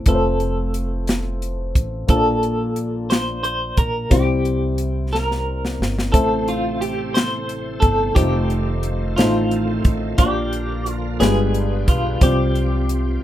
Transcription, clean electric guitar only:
0, 0, Header, 1, 2, 480
1, 0, Start_track
1, 0, Key_signature, -1, "major"
1, 0, Tempo, 674916
1, 45, Time_signature, 6, 3, 24, 8
1, 9413, End_track
2, 0, Start_track
2, 0, Title_t, "Clean electric guitar"
2, 0, Program_c, 0, 27
2, 61, Note_on_c, 0, 69, 66
2, 1223, Note_off_c, 0, 69, 0
2, 1493, Note_on_c, 0, 69, 82
2, 2201, Note_off_c, 0, 69, 0
2, 2204, Note_on_c, 0, 72, 77
2, 2427, Note_off_c, 0, 72, 0
2, 2442, Note_on_c, 0, 72, 75
2, 2686, Note_off_c, 0, 72, 0
2, 2689, Note_on_c, 0, 70, 75
2, 2923, Note_on_c, 0, 67, 73
2, 2933, Note_off_c, 0, 70, 0
2, 3646, Note_on_c, 0, 70, 66
2, 3665, Note_off_c, 0, 67, 0
2, 4351, Note_off_c, 0, 70, 0
2, 4354, Note_on_c, 0, 69, 77
2, 4606, Note_off_c, 0, 69, 0
2, 4612, Note_on_c, 0, 65, 68
2, 4842, Note_off_c, 0, 65, 0
2, 4845, Note_on_c, 0, 67, 72
2, 5081, Note_on_c, 0, 72, 73
2, 5092, Note_off_c, 0, 67, 0
2, 5545, Note_off_c, 0, 72, 0
2, 5547, Note_on_c, 0, 69, 75
2, 5794, Note_off_c, 0, 69, 0
2, 5797, Note_on_c, 0, 67, 76
2, 6493, Note_off_c, 0, 67, 0
2, 6518, Note_on_c, 0, 65, 65
2, 7034, Note_off_c, 0, 65, 0
2, 7241, Note_on_c, 0, 67, 75
2, 7760, Note_off_c, 0, 67, 0
2, 7760, Note_on_c, 0, 65, 75
2, 7962, Note_off_c, 0, 65, 0
2, 7965, Note_on_c, 0, 68, 67
2, 8453, Note_off_c, 0, 68, 0
2, 8456, Note_on_c, 0, 65, 59
2, 8695, Note_off_c, 0, 65, 0
2, 8697, Note_on_c, 0, 67, 68
2, 9413, Note_off_c, 0, 67, 0
2, 9413, End_track
0, 0, End_of_file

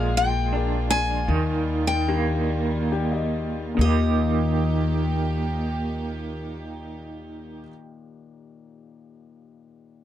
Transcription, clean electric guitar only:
0, 0, Header, 1, 2, 480
1, 0, Start_track
1, 0, Key_signature, -3, "major"
1, 0, Tempo, 742574
1, 834, Time_signature, 3, 2, 24, 8
1, 834, Tempo, 809717
1, 1794, Tempo, 916031
1, 5531, End_track
2, 0, Start_track
2, 0, Title_t, "Clean electric guitar"
2, 0, Program_c, 0, 27
2, 0, Note_on_c, 0, 53, 91
2, 0, Note_on_c, 0, 56, 61
2, 0, Note_on_c, 0, 65, 74
2, 340, Note_on_c, 0, 62, 60
2, 825, Note_off_c, 0, 53, 0
2, 827, Note_on_c, 0, 51, 83
2, 832, Note_off_c, 0, 65, 0
2, 876, Note_off_c, 0, 62, 0
2, 879, Note_off_c, 0, 56, 0
2, 1304, Note_on_c, 0, 58, 67
2, 2238, Note_off_c, 0, 51, 0
2, 2245, Note_on_c, 0, 51, 72
2, 2254, Note_off_c, 0, 58, 0
2, 2260, Note_on_c, 0, 58, 74
2, 2282, Note_on_c, 0, 67, 88
2, 4287, Note_off_c, 0, 51, 0
2, 4303, Note_off_c, 0, 58, 0
2, 4325, Note_off_c, 0, 67, 0
2, 5531, End_track
0, 0, End_of_file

